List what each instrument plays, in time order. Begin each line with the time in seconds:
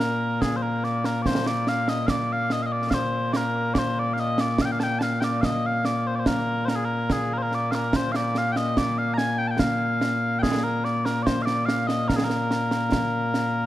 Already playing: bagpipes A#2 A#3 A#4
0.00 snare
0.42 bagpipes G#4, concert bass drum, snare
0.56 bagpipes C5
0.62 bagpipes A#4
0.84 bagpipes D5, snare
1.04 bagpipes A#4, snare
1.22 bagpipes D5, concert bass drum, snare
1.26 bagpipes C5
1.47 bagpipes D5, snare
1.67 bagpipes F5, snare
1.88 bagpipes D#5, snare
2.07 bagpipes D5 F5, concert bass drum, snare
2.33 bagpipes F5
2.50 bagpipes D#5, snare
2.63 bagpipes D#5 F5
2.72 bagpipes D5
2.90 bagpipes C5 F5, concert bass drum, snare
3.33 bagpipes A#4 D5, snare
3.74 bagpipes D5, concert bass drum, snare
3.78 bagpipes C5
3.99 bagpipes D5
4.14 bagpipes F5, snare
4.20 bagpipes D#5
4.38 bagpipes D5, snare
4.58 bagpipes F5, concert bass drum, snare
4.65 bagpipes G5
4.72 bagpipes F5
4.80 bagpipes G5 A5, snare
4.99 bagpipes F5 A5, snare
5.20 bagpipes D5 G5, snare
5.41 bagpipes D#5 F5, concert bass drum, snare
5.66 bagpipes F5
5.85 bagpipes D5, snare
6.07 bagpipes C5
6.15 bagpipes C5 D5
6.26 bagpipes A#4, concert bass drum, snare
6.65 bagpipes A#4 C5, snare
6.76 bagpipes G#4
6.85 bagpipes A#4
7.10 bagpipes G#4, concert bass drum, snare
7.34 bagpipes A#4
7.38 bagpipes C5
7.42 bagpipes A#4
7.52 bagpipes D5, snare
7.71 bagpipes A#4 F5, snare
7.93 bagpipes C5, concert bass drum, snare
8.12 bagpipes F5, snare
8.16 bagpipes D5
8.35 bagpipes F5, snare
8.52 bagpipes G5, snare
8.57 bagpipes D#5
8.77 bagpipes D5, concert bass drum, snare
8.98 bagpipes F5
9.14 bagpipes G#5 A#5
9.18 snare
9.38 bagpipes G5
9.48 bagpipes G5 A5
9.59 bagpipes F5, concert bass drum, snare
10.01 snare
10.39 bagpipes G#4 G5
10.43 concert bass drum, snare
10.64 bagpipes A#4
10.84 bagpipes D5, snare
11.05 bagpipes A#4, snare
11.23 bagpipes C5 D5
11.27 concert bass drum, snare
11.42 bagpipes D5 F5
11.47 snare
11.66 bagpipes F5, snare
11.87 bagpipes D#5, snare
12.08 bagpipes A#4, concert bass drum, snare
12.16 bagpipes G#4
12.24 bagpipes A#4
12.30 snare
12.51 snare
12.71 snare
12.92 concert bass drum, snare
13.34 snare